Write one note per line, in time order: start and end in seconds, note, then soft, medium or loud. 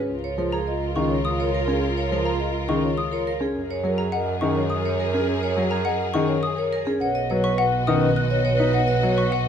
0.00 0.14 C#4 soft
0.00 0.14 G#4 medium
0.08 3.40 C#2 medium
0.08 0.30 F4 soft
0.08 3.37 F4 medium
0.08 3.37 A#4 medium
0.24 0.43 C#5 medium
0.38 0.57 F3 medium
0.38 0.60 F4 soft
0.38 0.57 G#4 medium
0.38 0.57 A#4 soft
0.52 0.72 G#4 medium
0.52 0.71 A#5 medium
0.68 0.91 F4 medium
0.68 0.86 D#5 medium
0.95 1.15 D#3 medium
0.95 1.15 C#4 medium
0.95 1.20 F4 medium
0.95 1.14 G#4 medium
0.95 1.15 C#6 medium
1.10 1.29 C#5 medium
1.25 1.50 F4 medium
1.25 1.43 D#6 medium
1.39 1.58 A#4 medium
1.39 1.58 C#5 medium
1.54 1.73 A#4 medium
1.58 1.80 F4 medium
1.68 1.87 C#4 medium
1.68 1.87 G#4 medium
1.89 2.10 F4 medium
1.97 2.16 C#5 medium
2.11 2.30 F3 medium
2.11 2.30 G#4 soft
2.11 2.30 A#4 medium
2.18 2.40 F4 medium
2.25 2.45 G#4 soft
2.25 2.44 A#5 medium
2.40 2.59 D#5 medium
2.49 2.71 F4 medium
2.68 2.88 D#3 medium
2.68 2.88 C#4 medium
2.68 2.87 G#4 medium
2.68 2.88 C#6 medium
2.80 3.01 F4 soft
2.80 3.02 C#5 medium
2.98 3.16 D#6 medium
3.10 3.31 F4 soft
3.10 3.31 A#4 medium
3.10 3.31 C#5 medium
3.27 3.46 A#4 medium
3.40 3.60 C#4 medium
3.40 3.59 G#4 medium
3.40 3.60 G#4 medium
3.55 6.86 F#2 medium
3.55 6.83 G#4 medium
3.55 3.76 A#4 soft
3.55 6.83 A#4 medium
3.70 3.89 C#5 medium
3.83 4.03 F#3 medium
3.83 4.03 G#4 medium
3.83 4.03 A#4 medium
3.83 4.07 A#4 soft
3.98 4.18 G#4 medium
3.98 4.17 A#5 medium
4.12 4.36 A#4 medium
4.12 4.32 D#5 medium
4.12 4.32 F#5 medium
4.41 4.61 D#3 medium
4.41 4.61 C#4 medium
4.41 4.61 G#4 medium
4.41 4.66 A#4 medium
4.41 4.60 C#6 medium
4.56 4.75 C#5 medium
4.70 4.89 D#6 medium
4.75 4.97 A#4 medium
4.85 5.04 A#4 medium
4.85 5.04 C#5 medium
5.00 5.18 A#4 medium
5.05 5.27 A#4 medium
5.14 5.33 C#4 medium
5.14 5.33 G#4 medium
5.36 5.57 A#4 medium
5.43 5.62 C#5 medium
5.56 5.76 F#3 medium
5.56 5.75 G#4 medium
5.56 5.76 A#4 medium
5.66 5.87 A#4 medium
5.71 5.91 G#4 medium
5.71 5.90 A#5 medium
5.85 6.04 D#5 medium
5.85 6.04 F#5 medium
5.96 6.17 A#4 medium
6.14 6.34 D#3 medium
6.14 6.34 C#4 medium
6.14 6.33 G#4 medium
6.14 6.33 C#6 medium
6.26 6.48 A#4 soft
6.26 6.48 C#5 medium
6.43 6.62 D#6 medium
6.56 6.76 A#4 medium
6.56 6.78 A#4 soft
6.56 6.77 C#5 medium
6.73 6.91 A#4 medium
6.85 7.06 C#4 medium
6.85 7.05 G#4 medium
6.85 7.06 G#4 medium
7.00 9.48 B1 medium
7.00 9.48 F#4 medium
7.00 7.22 B4 soft
7.00 7.20 C#5 medium
7.00 9.48 D#5 medium
7.00 7.20 F#5 medium
7.15 7.34 D#5 medium
7.30 7.49 F#3 medium
7.30 7.49 B4 medium
7.30 7.53 B4 medium
7.30 7.49 C#5 medium
7.44 7.63 B4 medium
7.44 7.63 C#6 medium
7.58 7.83 B4 medium
7.58 7.78 F#5 medium
7.87 8.07 D#3 medium
7.87 8.07 C#4 medium
7.87 8.06 B4 medium
7.87 8.07 D#6 medium
7.92 8.13 B4 medium
8.01 8.21 D#5 medium
8.16 8.35 F#6 medium
8.22 8.43 B4 medium
8.31 8.50 C#5 medium
8.31 8.50 D#5 medium
8.45 8.64 C#5 medium
8.53 8.74 B4 medium
8.59 8.79 D#4 medium
8.59 8.78 B4 medium
8.59 8.79 B4 medium
8.73 8.93 C#5 medium
8.73 8.93 F#5 medium
8.83 9.04 B4 medium
8.88 9.07 D#5 medium
9.03 9.22 F#3 medium
9.03 9.22 B4 medium
9.03 9.22 C#5 medium
9.13 9.34 B4 medium
9.17 9.36 B4 medium
9.17 9.37 C#6 medium
9.30 9.48 F#5 medium
9.43 9.48 B4 medium